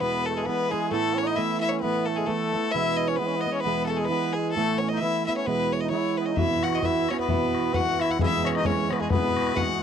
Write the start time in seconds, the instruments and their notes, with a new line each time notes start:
0.00 steel-string acoustic guitar E2 B2 E3 G#3 B3 E4, trombone B3, fiddle B4
0.26 trombone A3, fiddle A4
0.36 trombone G#3, fiddle G#4
0.46 steel-string acoustic guitar E3 G#3 B3 E4, trombone B3, fiddle B4
0.70 trombone G#3, steel-string acoustic guitar G#3 B3 E4, fiddle G#4
0.74 steel-string acoustic guitar E3
0.90 steel-string acoustic guitar A2 E3 A3 B3 E4, trombone A3, fiddle A4
1.14 trombone C#4, fiddle C#5
1.26 trombone D#4, fiddle D#5
1.35 steel-string acoustic guitar E3 A3 B3, trombone E4, fiddle E5
1.40 steel-string acoustic guitar E4
1.60 trombone E4, fiddle E5
1.69 trombone C#4, fiddle C#5
1.80 steel-string acoustic guitar A2 E3 B3, trombone B3, fiddle B4
1.84 steel-string acoustic guitar A3 E4
2.05 trombone A3, fiddle A4
2.16 trombone G#3, fiddle G#4
2.27 steel-string acoustic guitar E3 A3 B3 E4, trombone A3, fiddle A4
2.53 steel-string acoustic guitar A3 B3 E4
2.71 steel-string acoustic guitar E2 B2 E3, trombone E4, fiddle E5
2.75 steel-string acoustic guitar G#3 B3 E4
2.97 fiddle D#5
3.08 trombone C#4, fiddle C#5
3.16 steel-string acoustic guitar E3 G#3, trombone B3, fiddle B4
3.21 steel-string acoustic guitar B3 E4
3.27 trombone C#4
3.36 trombone B3
3.41 fiddle D#5
3.46 steel-string acoustic guitar E3 G#3 B3 E4, fiddle D#5
3.51 trombone C#4, fiddle C#5
3.60 trombone B3, fiddle B4
3.66 steel-string acoustic guitar E2 B2 E3 G#3 B3 E4
3.86 trombone A3, fiddle A4
3.96 trombone G#3, fiddle G#4
4.05 fiddle B4
4.10 steel-string acoustic guitar E3 G#3 B3 E4, trombone B3
4.33 trombone G#3, fiddle G#4
4.51 fiddle A4
4.56 steel-string acoustic guitar A2 E3 A3 B3 E4, trombone A3
4.78 trombone C#4, fiddle C#5
4.88 fiddle D#5
4.93 trombone D#4
4.97 fiddle E5
5.01 steel-string acoustic guitar E3 A3 B3 E4, trombone E4
5.26 steel-string acoustic guitar B3 E4, trombone E4, fiddle E5
5.30 steel-string acoustic guitar A3
5.36 trombone C#4, fiddle C#5
5.46 steel-string acoustic guitar E2 B2 E3 G#3 B3 E4, trombone B3, fiddle B4
5.72 fiddle C#5
5.80 trombone D#4, fiddle D#5
5.90 steel-string acoustic guitar E3 G#3 B3, trombone E4, fiddle C#5
5.94 steel-string acoustic guitar E4
6.17 trombone B3, fiddle B4
6.26 trombone C#4 D#4, fiddle D#5
6.36 steel-string acoustic guitar B2 E3 B3 E4 F#4, trombone E4, fiddle E5, bodhran
6.63 trombone F#4, fiddle F#5, bodhran
6.73 fiddle D#5, bodhran
6.82 steel-string acoustic guitar E3 B3 E4 F#4, trombone E4, fiddle E5, bodhran
7.09 steel-string acoustic guitar B3 E4 F#4, trombone C#4, fiddle C#5, bodhran
7.19 trombone B3, fiddle B4, bodhran
7.28 steel-string acoustic guitar B2 E3 B3 E4 F#4, bodhran
7.55 bodhran
7.73 steel-string acoustic guitar E3 B3 E4 F#4, trombone F#4, fiddle F#5, bodhran
8.00 trombone E4, fiddle E5, bodhran
8.10 fiddle F#5, bodhran
8.19 steel-string acoustic guitar E2 B2 E3 G#3 B3 G#4, trombone E4, fiddle E5, bodhran
8.45 trombone C#4, fiddle C#5, bodhran
8.55 trombone D#4, fiddle D#5, bodhran
8.64 steel-string acoustic guitar E3 G#3 B3 G#4, trombone C#4, fiddle C#5, bodhran
8.91 steel-string acoustic guitar E3 G#3 B3 G#4, trombone B3, fiddle B4, bodhran
9.00 trombone G#3, fiddle G#4, bodhran
9.10 steel-string acoustic guitar E2 B2 E3 G#3 B3 G#4, trombone B3, fiddle B4, bodhran
9.37 bodhran
9.47 bodhran
9.55 steel-string acoustic guitar E3 G#3 B3 G#4, trombone F#4, fiddle F#5, bodhran